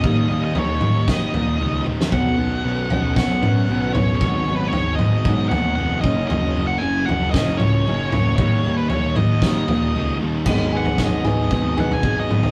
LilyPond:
<<
  \new Staff \with { instrumentName = "Lead electric guitar" } { \time 4/4 \key gis \minor \tempo 4 = 115 dis''8. dis''16 cis''4 dis''4. r8 | fis''2 fis''4. cis''8 | cis''8. b'16 cis''8 dis''4 fis''8 fis''8 dis''8 | dis''8. fis''16 gis''8 fis''8 dis''8 cis''4 cis''8 |
cis''8. b'16 cis''8 dis''2 r8 | r8 fis''8 dis''4. fis''16 gis''8 dis''8. | }
  \new Staff \with { instrumentName = "Distorted electric guitar" } { \clef bass \time 4/4 \key gis \minor <dis g ais dis'>4 <dis g ais dis'>8 <dis g ais dis'>8 <dis g ais dis'>4 <dis g ais dis'>8 <dis g ais dis'>8 | <b, fis b cis'>4 <b, fis b cis'>8 <b, fis b cis'>8 <b, fis b cis'>4 <b, fis b cis'>8 <b, fis b cis'>8 | <gis, dis gis b dis'>4 <gis, dis gis b dis'>8 <gis, dis gis b dis'>8 <gis, dis gis b dis'>4 <gis, dis gis b dis'>8 <fis, cis fis ais cis'>8 | <fis, cis fis ais cis'>4 <fis, cis fis ais cis'>8 <fis, cis fis ais cis'>8 <fis, cis fis ais cis'>4 <fis, cis fis ais cis'>8 <fis, cis fis ais cis'>8 |
<dis g ais dis'>4 <dis g ais dis'>8 <dis g ais dis'>8 <dis g ais dis'>4 <dis g ais dis'>8 <dis g ais dis'>8 | <gis, dis gis b dis'>4 <gis, dis gis b dis'>8 <gis, dis gis b dis'>8 <gis, dis gis b dis'>4 <gis, dis gis b dis'>8 <gis, dis gis b dis'>8 | }
  \new Staff \with { instrumentName = "Steel-string acoustic guitar" } { \clef bass \time 4/4 \key gis \minor <dis g ais>8 <dis g ais>8 <dis g>8 <dis g>8 <dis g ais>8 <dis g>8 <dis g>8 <dis g>8 | <b, fis b>8 <b, fis>8 <b, fis>8 <b, fis>8 <b, fis b>8 <b, fis>8 <b, fis b>8 <b, fis>8 | <gis, dis fis>8 <gis, dis fis>8 <gis, dis>8 <gis, dis>8 <gis, dis fis>8 r8 <gis, dis>8 <fis cis' dis'>8 | <fis cis' dis'>8 <fis cis'>8 <fis cis'>8 <fis cis'>8 <fis cis' dis'>8 <fis cis'>8 <fis cis' dis'>8 <fis cis'>8 |
<dis g ais>8 <dis g ais>8 <dis g>8 <dis g>8 <dis g ais>8 <dis g>8 <dis g>8 <dis g>8 | <gis, dis fis b dis' gis'>8 <fis b dis' gis'>8 <gis, dis fis b dis' gis'>8 <fis b dis' gis'>4 <fis b dis' gis'>8 <fis b dis' gis'>4 | }
  \new Staff \with { instrumentName = "Picked electric bass" } { \clef bass \time 4/4 \key gis \minor dis,8 dis,8 dis,8 dis,8 dis8 ais,8 cis,8 dis,8 | b,,8 b,,8 b,,8 b,,8 b,,8 fis,8 b,,8 b,,8 | gis,,8 gis,,8 gis,,8 gis,,8 gis,8 dis,8 eis,,8 fis,,8 | fis,,8 fis,,8 fis,,8 fis,,8 fis,,8 cis,8 fis,,8 fis,,8 |
dis,8 dis,8 dis,8 dis,8 dis8 ais,8 cis,8 dis,8 | gis,,8 gis,,8 gis,,8 gis,,8 gis,,8 gis,,8 gis,,8 gis,,8 | }
  \new DrumStaff \with { instrumentName = "Drums" } \drummode { \time 4/4 <bd toml>4 tomfh8 toml8 <bd sn>8 tomfh8 r8 tommh16 sn16 | <bd tomfh>4 r8 tomfh8 <bd sn>8 toml8 r8 <tomfh toml>8 | bd4 tomfh8 toml8 bd8 tomfh8 r8 bd8 | tomfh4 r8 tomfh8 <bd sn>8 toml8 r8 <tomfh toml>8 |
<bd toml>4 tomfh8 toml8 <bd sn>8 tomfh8 r4 | <cymc bd tomfh>8. tomfh16 <bd sn>8 <tomfh toml>8 <bd tomfh>8 tomfh16 tomfh16 bd8 toml16 tomfh16 | }
>>